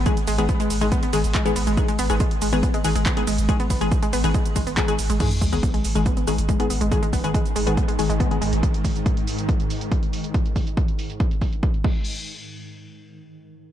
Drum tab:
CC |----------------|----------------|----------------|x---------------|
RD |--x---x---x---x-|--x---x---x---x-|--x---x---x---x-|----------------|
HH |xxoxxxoxxxoxxxox|xxoxxxoxxxoxxxox|xxoxxxoxxxoxxxox|xxoxxxoxxxoxxxox|
SH |xxxxxxxxxxxxxxxx|xxxxx-xxxxxxx-xx|xxxxxxxxxxxxxxxx|xxxxx-xxxxxxx-xx|
CP |------------x---|------------x---|------------x---|----------------|
BD |o---o---o---o---|o---o---o---o---|o-o-o---o-o-o---|o-o-o---o---o---|

CC |----------------|----------------|--------------x-|----------------|
RD |----------------|----------------|----------------|----------------|
HH |xxoxxxoxxxoxxxox|xxoxxxoxxxoxxxox|xxoxxxoxxxoxxx--|----------------|
SH |xxxxxxxxxxxxx-xx|xxxxx-xxxxxxx-xx|xxxxxxxxxxxxx---|----------------|
CP |----------------|----------------|----------------|----------------|
BD |o-o-o---o---o---|o-o-o---o---o---|o-o-o---o-o-o-o-|----------------|